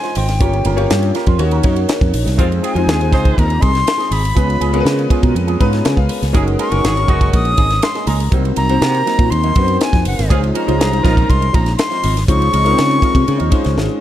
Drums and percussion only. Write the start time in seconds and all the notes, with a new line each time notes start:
0.03 snare, ride
0.15 open hi-hat, ride
0.28 snare, ride
0.40 kick, hi-hat pedal, ride
0.53 ride
0.65 ride
0.78 ride
0.90 snare, ride
1.03 ride
1.15 snare, ride
1.26 kick, ride
1.39 ride
1.51 ride
1.63 kick, ride
1.76 ride
1.89 snare, ride
2.01 kick, ride
2.14 open hi-hat, ride
2.27 snare, ride
2.39 kick, hi-hat pedal, ride
2.52 ride
2.64 ride
2.76 ride
2.89 snare, ride
3.01 ride
3.13 kick, snare, ride
3.25 kick, ride
3.38 kick, ride
3.50 ride
3.62 kick, ride
3.75 snare, ride
3.87 snare, ride
4.00 snare, ride
4.12 open hi-hat, ride
4.25 ride
4.37 kick, hi-hat pedal, ride
4.50 ride
4.61 ride
4.74 ride
4.86 snare, ride
4.99 ride
5.10 kick, ride
5.23 kick, ride
5.36 ride
5.48 ride
5.60 kick, ride
5.73 snare, ride
5.85 snare, ride
5.97 kick
6.09 open hi-hat, ride
6.23 snare, ride
6.34 kick, hi-hat pedal, ride
6.48 ride
6.59 ride
6.72 ride
6.84 snare, ride
6.97 ride
7.08 kick, ride
7.21 kick, ride
7.33 kick, ride
7.45 ride
7.57 kick, ride
7.70 snare, ride
7.82 snare, ride
7.95 snare, ride
8.07 open hi-hat, ride
8.20 ride
8.32 kick, hi-hat pedal, ride
8.45 ride
8.56 ride
8.69 ride
8.82 snare, ride
8.94 ride
9.07 snare, ride
9.19 kick, ride
9.32 ride
9.43 ride
9.55 kick, ride
9.68 ride
9.81 snare, ride
9.93 kick, snare, ride
10.05 open hi-hat, ride
10.19 snare, ride
10.30 kick, hi-hat pedal, ride
10.44 ride
10.55 ride
10.68 ride
10.81 snare, ride
10.93 ride
11.05 kick, snare, ride
11.17 kick, ride
11.30 kick, ride
11.42 ride
11.54 kick, ride
11.66 snare, ride
11.79 snare, ride
11.92 snare, ride
12.03 open hi-hat, ride
12.17 snare, ride
12.28 kick, hi-hat pedal, ride
12.42 ride
12.53 ride
12.66 ride
12.78 snare, ride
12.91 ride
13.02 kick, ride
13.15 kick, ride
13.28 ride
13.40 ride
13.52 kick, ride
13.64 snare, ride
13.78 snare